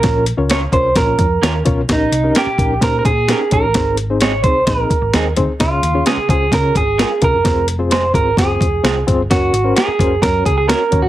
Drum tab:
HH |xxxxxxxx|xxxxxxxx|xxxxxxxx|xxxxxxxx|
SD |o-o-o-o-|o-o-o-o-|o-o-o-o-|o-o-o-o-|
BD |o--ooo-o|o--ooo-o|o--ooo-o|o--ooo-o|

HH |xxxxxxxx|xxxxxxxx|
SD |o-o-o-o-|o-o-o-o-|
BD |o--ooo-o|o--ooo-o|